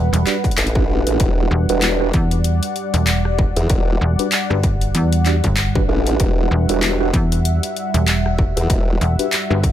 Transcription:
0.00 9.72 G3 medium
0.00 1.20 B4 medium
0.00 9.72 F#5 medium
0.13 0.24 E1 loud
0.13 closed hi-hat medium
0.27 0.35 D4 medium
0.27 0.35 F#4 medium
0.27 0.35 G4 medium
0.27 0.35 D5 medium
0.27 clap medium
0.27 closed hi-hat soft
0.44 kick medium
0.44 closed hi-hat soft
0.51 closed hi-hat soft
0.58 1.04 A1 loud
0.58 clap loud
0.58 closed hi-hat medium
0.67 closed hi-hat soft
0.75 0.82 D4 medium
0.75 0.82 F#4 medium
0.75 0.82 G4 medium
0.75 0.82 B4 medium
0.75 kick loud
0.89 1.65 D4 medium
0.89 1.65 F#4 medium
0.89 1.65 G4 medium
0.89 1.65 B4 medium
1.07 1.18 A1 loud
1.07 closed hi-hat medium
1.20 1.49 E1 loud
1.20 6.20 D5 medium
1.20 kick loud
1.20 closed hi-hat medium
1.51 1.66 E1 loud
1.69 2.12 E1 loud
1.69 1.96 D4 medium
1.69 1.96 F#4 medium
1.69 1.96 G4 medium
1.69 1.96 B4 loud
1.69 closed hi-hat medium
1.82 clap loud
1.82 closed hi-hat medium
2.00 2.07 D4 loud
2.00 2.07 F#4 medium
2.00 2.07 G4 medium
2.00 2.07 B4 loud
2.00 cross-stick soft
2.13 2.60 E2 loud
2.13 kick loud
2.13 closed hi-hat soft
2.31 closed hi-hat medium
2.44 closed hi-hat medium
2.63 closed hi-hat medium
2.76 closed hi-hat soft
2.94 3.54 E1 medium
2.94 closed hi-hat soft
3.07 clap loud
3.07 closed hi-hat medium
3.25 cross-stick medium
3.39 kick loud
3.56 3.68 E2 loud
3.56 closed hi-hat medium
3.70 3.99 E1 loud
3.70 kick loud
3.70 closed hi-hat medium
4.01 4.16 E1 medium
4.19 4.26 D4 medium
4.19 4.26 F#4 medium
4.19 4.26 G4 medium
4.19 4.26 B4 medium
4.19 closed hi-hat medium
4.32 clap loud
4.32 closed hi-hat medium
4.50 4.93 G1 loud
4.50 4.57 D4 medium
4.50 4.57 F#4 medium
4.50 4.57 G4 medium
4.50 4.57 B4 loud
4.50 cross-stick soft
4.63 kick loud
4.63 closed hi-hat soft
4.81 closed hi-hat soft
4.95 5.41 E2 loud
4.95 closed hi-hat medium
5.12 closed hi-hat medium
5.26 5.35 D4 medium
5.26 5.35 F#4 medium
5.26 5.35 G4 medium
5.26 5.35 D5 medium
5.26 clap medium
5.26 closed hi-hat soft
5.44 5.87 G1 medium
5.44 kick medium
5.44 closed hi-hat soft
5.57 clap loud
5.57 closed hi-hat medium
5.75 5.82 D4 medium
5.75 5.82 F#4 medium
5.75 5.82 G4 medium
5.75 5.82 B4 loud
5.75 kick loud
5.88 6.18 A1 loud
5.88 6.65 D4 medium
5.88 6.65 F#4 medium
5.88 6.65 G4 medium
5.88 6.65 B4 medium
6.07 closed hi-hat medium
6.20 6.49 E1 medium
6.20 9.72 E5 medium
6.20 kick loud
6.20 closed hi-hat medium
6.51 6.66 E1 loud
6.69 7.12 E1 loud
6.69 6.96 D4 medium
6.69 6.96 F#4 medium
6.69 6.96 G4 medium
6.69 6.96 B4 loud
6.69 closed hi-hat medium
6.83 clap loud
6.83 closed hi-hat medium
7.00 7.07 D4 loud
7.00 7.07 F#4 medium
7.00 7.07 G4 medium
7.00 7.07 B4 loud
7.00 cross-stick soft
7.13 7.60 E2 loud
7.13 kick loud
7.13 closed hi-hat soft
7.32 closed hi-hat medium
7.45 closed hi-hat medium
7.63 closed hi-hat medium
7.76 closed hi-hat soft
7.94 8.54 E1 loud
7.94 closed hi-hat medium
8.08 clap loud
8.08 closed hi-hat medium
8.26 cross-stick medium
8.39 kick loud
8.57 8.68 E2 loud
8.57 closed hi-hat medium
8.70 8.99 E1 loud
8.70 kick loud
8.70 closed hi-hat medium
9.01 9.16 E1 loud
9.01 closed hi-hat soft
9.19 9.26 D4 medium
9.19 9.26 F#4 medium
9.19 9.26 G4 medium
9.19 9.26 B4 medium
9.19 closed hi-hat medium
9.33 clap loud
9.33 closed hi-hat medium
9.50 9.72 G1 loud
9.50 9.57 D4 medium
9.50 9.57 F#4 medium
9.50 9.57 G4 medium
9.50 9.57 B4 loud
9.50 cross-stick soft
9.64 kick loud
9.64 closed hi-hat soft

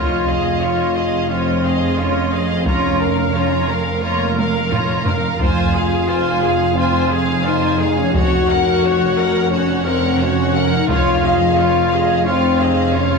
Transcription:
0.00 5.36 F1 medium
0.00 5.36 F2 soft
0.00 0.26 F4 soft
0.00 1.30 F4 medium
0.00 0.26 C#5 soft
0.00 0.25 D#5 soft
0.28 0.62 G#4 soft
0.28 0.63 D#5 soft
0.28 0.62 F5 soft
0.62 0.97 F4 soft
0.62 0.96 C#5 soft
0.62 0.97 D#5 soft
0.97 1.31 G#4 soft
0.97 1.31 D#5 soft
0.97 1.32 F5 soft
1.30 1.98 C4 medium
1.30 1.62 F4 soft
1.30 1.62 C#5 soft
1.30 1.62 D#5 soft
1.65 1.99 G#4 soft
1.65 1.99 D#5 soft
1.65 1.99 F5 soft
1.98 2.50 C#4 medium
1.98 2.32 F4 soft
1.98 2.33 C#5 soft
1.98 2.33 D#5 soft
2.32 2.67 G#4 soft
2.32 2.68 D#5 soft
2.32 2.67 F5 soft
2.53 2.68 C4 medium
2.67 3.34 C#4 medium
2.67 2.99 F4 medium
2.67 2.99 C#5 soft
2.67 2.99 A#5 soft
2.67 taiko medium
3.00 3.35 A#4 soft
3.00 3.36 A#4 soft
3.00 3.36 F5 soft
3.34 3.85 C#4 medium
3.34 3.70 F4 soft
3.34 3.69 C#5 soft
3.34 3.70 A#5 soft
3.69 4.03 A#4 soft
3.69 4.04 A#4 soft
3.69 4.04 F5 medium
3.88 4.04 C4 medium
4.02 4.38 A#3 medium
4.02 4.36 F4 medium
4.02 4.35 C#5 soft
4.02 4.36 A#5 soft
4.39 4.73 A#4 soft
4.39 4.73 F5 medium
4.39 taiko high medium
4.72 5.06 F4 medium
4.72 5.07 C#5 soft
4.72 5.07 A#5 medium
4.72 taiko low-mid medium
5.06 5.40 A#4 soft
5.06 5.41 A#4 medium
5.06 5.42 F5 soft
5.06 taiko low medium
5.39 10.86 F1 medium
5.39 10.85 F2 medium
5.39 6.72 F4 medium
5.39 5.72 F4 medium
5.39 5.73 C5 medium
5.39 taiko medium
5.44 5.74 G#5 medium
5.74 6.08 G#4 medium
5.74 6.09 G#4 medium
5.74 6.10 F5 medium
6.08 6.42 F4 medium
6.08 6.43 C5 medium
6.12 6.44 G#5 medium
6.43 6.77 G#4 medium
6.43 6.77 G#4 soft
6.43 6.78 F5 medium
6.75 7.44 C4 medium
6.75 7.09 F4 medium
6.75 7.09 C5 medium
6.75 7.09 G#5 medium
7.11 7.45 G#4 medium
7.11 7.46 G#4 medium
7.11 7.46 F5 medium
7.45 7.97 D#4 medium
7.45 7.80 F4 medium
7.45 7.81 C5 medium
7.45 7.81 G#5 medium
7.78 8.14 G#4 medium
7.78 8.15 G#4 medium
7.78 8.16 F5 medium
7.99 8.15 C#4 medium
8.13 9.48 F#4 loud
8.13 8.47 F#4 medium
8.13 8.48 C#5 medium
8.13 8.48 F#5 medium
8.13 taiko medium
8.49 8.84 A#4 medium
8.49 8.83 C#5 medium
8.49 8.84 F#5 medium
8.83 9.17 F#4 medium
8.83 9.19 C#5 medium
8.83 9.17 F#5 medium
9.17 9.52 A#4 medium
9.17 9.52 C#5 medium
9.17 9.52 F#5 medium
9.51 9.85 C#4 medium
9.51 9.83 F#4 medium
9.51 9.83 C#5 medium
9.51 9.83 F#5 medium
9.85 10.19 C4 medium
9.85 10.20 A#4 medium
9.85 10.21 C#5 medium
9.85 10.21 F#5 medium
10.20 10.73 C#4 medium
10.20 10.55 F#4 medium
10.20 10.55 C#5 medium
10.20 10.55 F#5 medium
10.55 10.89 A#4 medium
10.55 10.89 C#5 medium
10.55 10.89 F#5 medium
10.74 10.90 D#4 medium
10.89 13.19 F1 medium
10.89 13.19 F2 medium
10.89 12.27 F4 loud
10.89 11.21 F4 medium
10.89 11.22 C#5 medium
10.89 11.22 F5 medium
10.89 taiko medium
11.23 11.58 G#4 medium
11.23 11.58 D#5 soft
11.23 11.58 F5 medium
11.57 11.93 F4 medium
11.57 11.92 C#5 medium
11.57 11.93 F5 medium
11.92 12.27 G#4 medium
11.92 12.28 D#5 medium
11.92 12.27 F5 soft
12.25 12.95 C4 medium
12.25 12.59 F4 medium
12.25 12.58 C#5 soft
12.25 12.59 F5 medium
12.60 12.95 G#4 soft
12.60 12.95 D#5 medium
12.60 12.95 F5 soft
12.94 13.19 C#4 medium
12.94 13.19 F4 soft
12.94 13.19 C#5 soft
12.94 13.19 F5 medium

